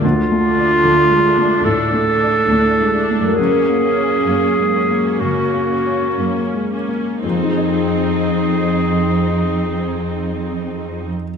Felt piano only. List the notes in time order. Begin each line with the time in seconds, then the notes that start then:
0.05 D2
0.32 A3
0.59 D5
0.84 A3
1.11 G#3
1.38 A3
1.66 A2
1.93 A3
2.23 D5
2.52 A3
2.81 G#3
3.11 A3
3.39 F#2
3.69 A#3
3.98 C#5
4.29 A#3
4.59 G#3
4.91 A#3
5.22 C#3
5.54 A#3
5.87 C#5
6.19 A#3
6.53 G#3
6.89 A#3
7.23 F2
7.30 F3
7.37 C4
7.44 D#4
7.51 G#4
7.58 D#5